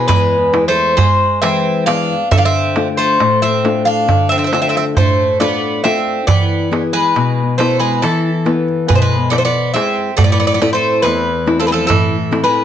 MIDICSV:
0, 0, Header, 1, 5, 480
1, 0, Start_track
1, 0, Key_signature, 0, "minor"
1, 0, Tempo, 884956
1, 1255, Time_signature, 9, 3, 24, 8
1, 3645, Tempo, 860832
1, 6948, End_track
2, 0, Start_track
2, 0, Title_t, "Bouzouki"
2, 0, Program_c, 0, 25
2, 42, Note_on_c, 0, 71, 94
2, 345, Note_off_c, 0, 71, 0
2, 369, Note_on_c, 0, 72, 86
2, 519, Note_off_c, 0, 72, 0
2, 525, Note_on_c, 0, 72, 84
2, 752, Note_off_c, 0, 72, 0
2, 768, Note_on_c, 0, 76, 92
2, 995, Note_off_c, 0, 76, 0
2, 1009, Note_on_c, 0, 77, 88
2, 1236, Note_off_c, 0, 77, 0
2, 1257, Note_on_c, 0, 76, 95
2, 1291, Note_off_c, 0, 76, 0
2, 1293, Note_on_c, 0, 77, 87
2, 1329, Note_off_c, 0, 77, 0
2, 1331, Note_on_c, 0, 76, 97
2, 1558, Note_off_c, 0, 76, 0
2, 1613, Note_on_c, 0, 72, 83
2, 1838, Note_off_c, 0, 72, 0
2, 1856, Note_on_c, 0, 76, 89
2, 2079, Note_off_c, 0, 76, 0
2, 2090, Note_on_c, 0, 77, 89
2, 2315, Note_off_c, 0, 77, 0
2, 2328, Note_on_c, 0, 76, 87
2, 2368, Note_off_c, 0, 76, 0
2, 2374, Note_on_c, 0, 76, 60
2, 2403, Note_off_c, 0, 76, 0
2, 2410, Note_on_c, 0, 76, 67
2, 2451, Note_off_c, 0, 76, 0
2, 2458, Note_on_c, 0, 76, 64
2, 2496, Note_off_c, 0, 76, 0
2, 2505, Note_on_c, 0, 76, 73
2, 2538, Note_off_c, 0, 76, 0
2, 2544, Note_on_c, 0, 76, 65
2, 2581, Note_off_c, 0, 76, 0
2, 2587, Note_on_c, 0, 76, 70
2, 2623, Note_off_c, 0, 76, 0
2, 2694, Note_on_c, 0, 72, 79
2, 2915, Note_off_c, 0, 72, 0
2, 2929, Note_on_c, 0, 74, 87
2, 3151, Note_off_c, 0, 74, 0
2, 3166, Note_on_c, 0, 76, 83
2, 3388, Note_off_c, 0, 76, 0
2, 3401, Note_on_c, 0, 74, 90
2, 3699, Note_off_c, 0, 74, 0
2, 3763, Note_on_c, 0, 71, 85
2, 4106, Note_off_c, 0, 71, 0
2, 4124, Note_on_c, 0, 72, 75
2, 4242, Note_off_c, 0, 72, 0
2, 4244, Note_on_c, 0, 71, 77
2, 4359, Note_off_c, 0, 71, 0
2, 4372, Note_on_c, 0, 69, 70
2, 4852, Note_on_c, 0, 71, 73
2, 4888, Note_off_c, 0, 71, 0
2, 4890, Note_on_c, 0, 72, 65
2, 4923, Note_off_c, 0, 72, 0
2, 4925, Note_on_c, 0, 71, 75
2, 5080, Note_off_c, 0, 71, 0
2, 5091, Note_on_c, 0, 74, 77
2, 5127, Note_off_c, 0, 74, 0
2, 5129, Note_on_c, 0, 72, 64
2, 5165, Note_off_c, 0, 72, 0
2, 5167, Note_on_c, 0, 74, 79
2, 5313, Note_off_c, 0, 69, 0
2, 5321, Note_off_c, 0, 74, 0
2, 5327, Note_on_c, 0, 76, 81
2, 5570, Note_off_c, 0, 76, 0
2, 5572, Note_on_c, 0, 74, 86
2, 5601, Note_off_c, 0, 74, 0
2, 5608, Note_on_c, 0, 74, 66
2, 5646, Note_off_c, 0, 74, 0
2, 5652, Note_on_c, 0, 74, 75
2, 5689, Note_off_c, 0, 74, 0
2, 5695, Note_on_c, 0, 74, 60
2, 5729, Note_off_c, 0, 74, 0
2, 5736, Note_on_c, 0, 74, 69
2, 5769, Note_off_c, 0, 74, 0
2, 5776, Note_on_c, 0, 74, 64
2, 5812, Note_off_c, 0, 74, 0
2, 5819, Note_on_c, 0, 74, 69
2, 5863, Note_off_c, 0, 74, 0
2, 5880, Note_on_c, 0, 72, 80
2, 6034, Note_off_c, 0, 72, 0
2, 6044, Note_on_c, 0, 71, 89
2, 6344, Note_off_c, 0, 71, 0
2, 6363, Note_on_c, 0, 69, 74
2, 6401, Note_off_c, 0, 69, 0
2, 6404, Note_on_c, 0, 71, 65
2, 6432, Note_off_c, 0, 71, 0
2, 6434, Note_on_c, 0, 69, 82
2, 6510, Note_off_c, 0, 69, 0
2, 6516, Note_on_c, 0, 69, 86
2, 6830, Note_off_c, 0, 69, 0
2, 6832, Note_on_c, 0, 71, 80
2, 6948, Note_off_c, 0, 71, 0
2, 6948, End_track
3, 0, Start_track
3, 0, Title_t, "Bouzouki"
3, 0, Program_c, 1, 25
3, 47, Note_on_c, 1, 56, 75
3, 348, Note_off_c, 1, 56, 0
3, 372, Note_on_c, 1, 57, 72
3, 521, Note_off_c, 1, 57, 0
3, 527, Note_on_c, 1, 56, 74
3, 753, Note_off_c, 1, 56, 0
3, 773, Note_on_c, 1, 60, 85
3, 997, Note_off_c, 1, 60, 0
3, 1012, Note_on_c, 1, 62, 80
3, 1237, Note_off_c, 1, 62, 0
3, 1254, Note_on_c, 1, 57, 80
3, 1288, Note_on_c, 1, 62, 68
3, 1291, Note_off_c, 1, 57, 0
3, 1327, Note_off_c, 1, 62, 0
3, 1330, Note_on_c, 1, 60, 83
3, 1557, Note_off_c, 1, 60, 0
3, 1620, Note_on_c, 1, 57, 70
3, 1841, Note_off_c, 1, 57, 0
3, 1859, Note_on_c, 1, 60, 69
3, 2080, Note_off_c, 1, 60, 0
3, 2099, Note_on_c, 1, 62, 75
3, 2320, Note_off_c, 1, 62, 0
3, 2341, Note_on_c, 1, 60, 72
3, 2373, Note_off_c, 1, 60, 0
3, 2380, Note_on_c, 1, 60, 52
3, 2416, Note_off_c, 1, 60, 0
3, 2424, Note_on_c, 1, 60, 58
3, 2458, Note_off_c, 1, 60, 0
3, 2464, Note_on_c, 1, 60, 49
3, 2500, Note_off_c, 1, 60, 0
3, 2506, Note_on_c, 1, 60, 59
3, 2541, Note_off_c, 1, 60, 0
3, 2548, Note_on_c, 1, 60, 48
3, 2583, Note_off_c, 1, 60, 0
3, 2589, Note_on_c, 1, 60, 54
3, 2624, Note_off_c, 1, 60, 0
3, 2699, Note_on_c, 1, 57, 72
3, 2918, Note_off_c, 1, 57, 0
3, 2937, Note_on_c, 1, 59, 71
3, 3156, Note_off_c, 1, 59, 0
3, 3172, Note_on_c, 1, 60, 72
3, 3391, Note_off_c, 1, 60, 0
3, 3404, Note_on_c, 1, 59, 71
3, 3701, Note_off_c, 1, 59, 0
3, 3764, Note_on_c, 1, 56, 66
3, 4106, Note_off_c, 1, 56, 0
3, 4127, Note_on_c, 1, 57, 66
3, 4240, Note_off_c, 1, 57, 0
3, 4248, Note_on_c, 1, 56, 68
3, 4361, Note_off_c, 1, 56, 0
3, 4371, Note_on_c, 1, 52, 61
3, 4853, Note_on_c, 1, 56, 66
3, 4889, Note_off_c, 1, 56, 0
3, 4892, Note_on_c, 1, 57, 56
3, 4927, Note_on_c, 1, 56, 67
3, 4928, Note_off_c, 1, 57, 0
3, 5081, Note_off_c, 1, 56, 0
3, 5085, Note_on_c, 1, 59, 69
3, 5125, Note_off_c, 1, 59, 0
3, 5129, Note_on_c, 1, 57, 60
3, 5164, Note_off_c, 1, 57, 0
3, 5166, Note_on_c, 1, 59, 70
3, 5312, Note_off_c, 1, 52, 0
3, 5320, Note_off_c, 1, 59, 0
3, 5330, Note_on_c, 1, 60, 67
3, 5555, Note_off_c, 1, 60, 0
3, 5567, Note_on_c, 1, 57, 73
3, 5609, Note_off_c, 1, 57, 0
3, 5611, Note_on_c, 1, 59, 52
3, 5647, Note_off_c, 1, 59, 0
3, 5654, Note_on_c, 1, 59, 61
3, 5688, Note_off_c, 1, 59, 0
3, 5695, Note_on_c, 1, 59, 56
3, 5730, Note_off_c, 1, 59, 0
3, 5736, Note_on_c, 1, 59, 61
3, 5772, Note_off_c, 1, 59, 0
3, 5779, Note_on_c, 1, 59, 59
3, 5811, Note_off_c, 1, 59, 0
3, 5817, Note_on_c, 1, 59, 61
3, 5858, Note_off_c, 1, 59, 0
3, 5890, Note_on_c, 1, 57, 64
3, 6040, Note_off_c, 1, 57, 0
3, 6048, Note_on_c, 1, 52, 71
3, 6345, Note_off_c, 1, 52, 0
3, 6367, Note_on_c, 1, 53, 66
3, 6404, Note_off_c, 1, 53, 0
3, 6411, Note_on_c, 1, 56, 59
3, 6440, Note_off_c, 1, 56, 0
3, 6442, Note_on_c, 1, 53, 69
3, 6520, Note_off_c, 1, 53, 0
3, 6525, Note_on_c, 1, 52, 76
3, 6821, Note_off_c, 1, 52, 0
3, 6835, Note_on_c, 1, 56, 63
3, 6948, Note_off_c, 1, 56, 0
3, 6948, End_track
4, 0, Start_track
4, 0, Title_t, "Nylon-string guitar"
4, 0, Program_c, 2, 24
4, 0, Note_on_c, 2, 56, 46
4, 0, Note_on_c, 2, 59, 46
4, 0, Note_on_c, 2, 64, 49
4, 49, Note_on_c, 2, 40, 70
4, 192, Note_off_c, 2, 56, 0
4, 193, Note_off_c, 2, 59, 0
4, 194, Note_off_c, 2, 64, 0
4, 287, Note_on_c, 2, 56, 48
4, 291, Note_on_c, 2, 64, 56
4, 518, Note_off_c, 2, 40, 0
4, 675, Note_off_c, 2, 56, 0
4, 677, Note_off_c, 2, 64, 0
4, 771, Note_on_c, 2, 56, 52
4, 774, Note_on_c, 2, 71, 46
4, 776, Note_on_c, 2, 52, 55
4, 1007, Note_off_c, 2, 56, 0
4, 1014, Note_on_c, 2, 56, 50
4, 1016, Note_off_c, 2, 71, 0
4, 1017, Note_on_c, 2, 59, 46
4, 1018, Note_on_c, 2, 68, 53
4, 1161, Note_off_c, 2, 52, 0
4, 1207, Note_off_c, 2, 56, 0
4, 1209, Note_off_c, 2, 59, 0
4, 1209, Note_off_c, 2, 68, 0
4, 1254, Note_on_c, 2, 50, 69
4, 1498, Note_on_c, 2, 57, 48
4, 1501, Note_on_c, 2, 62, 45
4, 1503, Note_on_c, 2, 65, 53
4, 1721, Note_off_c, 2, 50, 0
4, 1738, Note_on_c, 2, 45, 66
4, 1881, Note_off_c, 2, 57, 0
4, 1883, Note_off_c, 2, 62, 0
4, 1884, Note_off_c, 2, 65, 0
4, 1976, Note_on_c, 2, 57, 46
4, 1980, Note_on_c, 2, 62, 41
4, 1982, Note_on_c, 2, 65, 53
4, 2202, Note_off_c, 2, 45, 0
4, 2214, Note_on_c, 2, 50, 69
4, 2359, Note_off_c, 2, 57, 0
4, 2360, Note_off_c, 2, 62, 0
4, 2362, Note_off_c, 2, 65, 0
4, 2451, Note_on_c, 2, 57, 51
4, 2454, Note_on_c, 2, 62, 47
4, 2458, Note_on_c, 2, 65, 55
4, 2678, Note_off_c, 2, 50, 0
4, 2695, Note_on_c, 2, 45, 64
4, 2834, Note_off_c, 2, 57, 0
4, 2836, Note_off_c, 2, 62, 0
4, 2837, Note_off_c, 2, 65, 0
4, 2926, Note_on_c, 2, 57, 47
4, 2929, Note_on_c, 2, 62, 45
4, 2932, Note_on_c, 2, 65, 55
4, 3156, Note_off_c, 2, 45, 0
4, 3162, Note_off_c, 2, 57, 0
4, 3163, Note_off_c, 2, 62, 0
4, 3168, Note_off_c, 2, 65, 0
4, 3169, Note_on_c, 2, 57, 48
4, 3170, Note_on_c, 2, 62, 45
4, 3174, Note_on_c, 2, 65, 50
4, 3359, Note_off_c, 2, 57, 0
4, 3359, Note_off_c, 2, 62, 0
4, 3362, Note_off_c, 2, 65, 0
4, 3408, Note_on_c, 2, 52, 67
4, 3641, Note_on_c, 2, 59, 50
4, 3644, Note_on_c, 2, 64, 42
4, 3647, Note_on_c, 2, 68, 56
4, 3873, Note_off_c, 2, 52, 0
4, 3891, Note_on_c, 2, 47, 69
4, 4030, Note_off_c, 2, 59, 0
4, 4032, Note_off_c, 2, 64, 0
4, 4034, Note_off_c, 2, 68, 0
4, 4133, Note_on_c, 2, 59, 43
4, 4135, Note_on_c, 2, 64, 41
4, 4139, Note_on_c, 2, 71, 52
4, 4359, Note_off_c, 2, 47, 0
4, 4377, Note_on_c, 2, 52, 67
4, 4518, Note_off_c, 2, 59, 0
4, 4520, Note_off_c, 2, 64, 0
4, 4521, Note_off_c, 2, 71, 0
4, 4613, Note_on_c, 2, 59, 50
4, 4615, Note_on_c, 2, 64, 43
4, 4617, Note_on_c, 2, 71, 52
4, 4843, Note_off_c, 2, 52, 0
4, 4859, Note_on_c, 2, 47, 64
4, 4998, Note_off_c, 2, 59, 0
4, 5000, Note_off_c, 2, 64, 0
4, 5000, Note_off_c, 2, 71, 0
4, 5095, Note_on_c, 2, 71, 50
4, 5099, Note_on_c, 2, 64, 45
4, 5323, Note_off_c, 2, 47, 0
4, 5331, Note_off_c, 2, 64, 0
4, 5335, Note_on_c, 2, 56, 47
4, 5337, Note_on_c, 2, 64, 43
4, 5342, Note_on_c, 2, 68, 53
4, 5479, Note_off_c, 2, 71, 0
4, 5526, Note_off_c, 2, 56, 0
4, 5528, Note_off_c, 2, 64, 0
4, 5530, Note_off_c, 2, 68, 0
4, 5576, Note_on_c, 2, 45, 69
4, 5814, Note_on_c, 2, 57, 47
4, 5817, Note_on_c, 2, 60, 45
4, 5819, Note_on_c, 2, 64, 54
4, 6039, Note_off_c, 2, 45, 0
4, 6056, Note_on_c, 2, 40, 72
4, 6196, Note_off_c, 2, 57, 0
4, 6197, Note_off_c, 2, 60, 0
4, 6199, Note_off_c, 2, 64, 0
4, 6289, Note_on_c, 2, 57, 48
4, 6292, Note_on_c, 2, 60, 43
4, 6295, Note_on_c, 2, 64, 53
4, 6516, Note_off_c, 2, 40, 0
4, 6528, Note_on_c, 2, 45, 66
4, 6670, Note_off_c, 2, 57, 0
4, 6671, Note_off_c, 2, 60, 0
4, 6673, Note_off_c, 2, 64, 0
4, 6763, Note_on_c, 2, 57, 47
4, 6766, Note_on_c, 2, 60, 44
4, 6767, Note_on_c, 2, 64, 55
4, 6948, Note_off_c, 2, 45, 0
4, 6948, Note_off_c, 2, 57, 0
4, 6948, Note_off_c, 2, 60, 0
4, 6948, Note_off_c, 2, 64, 0
4, 6948, End_track
5, 0, Start_track
5, 0, Title_t, "Darbuka"
5, 49, Note_on_c, 9, 63, 77
5, 49, Note_on_c, 9, 64, 70
5, 103, Note_off_c, 9, 63, 0
5, 103, Note_off_c, 9, 64, 0
5, 291, Note_on_c, 9, 63, 75
5, 345, Note_off_c, 9, 63, 0
5, 533, Note_on_c, 9, 64, 92
5, 587, Note_off_c, 9, 64, 0
5, 777, Note_on_c, 9, 63, 79
5, 832, Note_off_c, 9, 63, 0
5, 1017, Note_on_c, 9, 63, 76
5, 1072, Note_off_c, 9, 63, 0
5, 1137, Note_on_c, 9, 63, 30
5, 1191, Note_off_c, 9, 63, 0
5, 1256, Note_on_c, 9, 64, 104
5, 1310, Note_off_c, 9, 64, 0
5, 1376, Note_on_c, 9, 63, 31
5, 1430, Note_off_c, 9, 63, 0
5, 1496, Note_on_c, 9, 63, 78
5, 1550, Note_off_c, 9, 63, 0
5, 1737, Note_on_c, 9, 63, 76
5, 1792, Note_off_c, 9, 63, 0
5, 1858, Note_on_c, 9, 63, 26
5, 1912, Note_off_c, 9, 63, 0
5, 1979, Note_on_c, 9, 63, 70
5, 2033, Note_off_c, 9, 63, 0
5, 2217, Note_on_c, 9, 63, 74
5, 2217, Note_on_c, 9, 64, 69
5, 2271, Note_off_c, 9, 63, 0
5, 2271, Note_off_c, 9, 64, 0
5, 2455, Note_on_c, 9, 63, 71
5, 2510, Note_off_c, 9, 63, 0
5, 2694, Note_on_c, 9, 64, 89
5, 2749, Note_off_c, 9, 64, 0
5, 2933, Note_on_c, 9, 63, 76
5, 2987, Note_off_c, 9, 63, 0
5, 3169, Note_on_c, 9, 63, 70
5, 3223, Note_off_c, 9, 63, 0
5, 3291, Note_on_c, 9, 63, 26
5, 3345, Note_off_c, 9, 63, 0
5, 3407, Note_on_c, 9, 64, 95
5, 3461, Note_off_c, 9, 64, 0
5, 3649, Note_on_c, 9, 63, 67
5, 3705, Note_off_c, 9, 63, 0
5, 3891, Note_on_c, 9, 63, 70
5, 3947, Note_off_c, 9, 63, 0
5, 4013, Note_on_c, 9, 63, 24
5, 4068, Note_off_c, 9, 63, 0
5, 4135, Note_on_c, 9, 63, 67
5, 4191, Note_off_c, 9, 63, 0
5, 4256, Note_on_c, 9, 63, 26
5, 4311, Note_off_c, 9, 63, 0
5, 4377, Note_on_c, 9, 63, 71
5, 4433, Note_off_c, 9, 63, 0
5, 4617, Note_on_c, 9, 63, 66
5, 4673, Note_off_c, 9, 63, 0
5, 4739, Note_on_c, 9, 63, 26
5, 4795, Note_off_c, 9, 63, 0
5, 4860, Note_on_c, 9, 64, 85
5, 4915, Note_off_c, 9, 64, 0
5, 5100, Note_on_c, 9, 63, 72
5, 5156, Note_off_c, 9, 63, 0
5, 5220, Note_on_c, 9, 63, 26
5, 5276, Note_off_c, 9, 63, 0
5, 5340, Note_on_c, 9, 63, 67
5, 5396, Note_off_c, 9, 63, 0
5, 5459, Note_on_c, 9, 63, 27
5, 5515, Note_off_c, 9, 63, 0
5, 5577, Note_on_c, 9, 64, 88
5, 5632, Note_off_c, 9, 64, 0
5, 5699, Note_on_c, 9, 63, 25
5, 5754, Note_off_c, 9, 63, 0
5, 5818, Note_on_c, 9, 63, 64
5, 5873, Note_off_c, 9, 63, 0
5, 6058, Note_on_c, 9, 63, 63
5, 6113, Note_off_c, 9, 63, 0
5, 6179, Note_on_c, 9, 63, 25
5, 6235, Note_off_c, 9, 63, 0
5, 6296, Note_on_c, 9, 63, 61
5, 6352, Note_off_c, 9, 63, 0
5, 6533, Note_on_c, 9, 63, 69
5, 6533, Note_on_c, 9, 64, 62
5, 6588, Note_off_c, 9, 63, 0
5, 6588, Note_off_c, 9, 64, 0
5, 6771, Note_on_c, 9, 63, 68
5, 6826, Note_off_c, 9, 63, 0
5, 6948, End_track
0, 0, End_of_file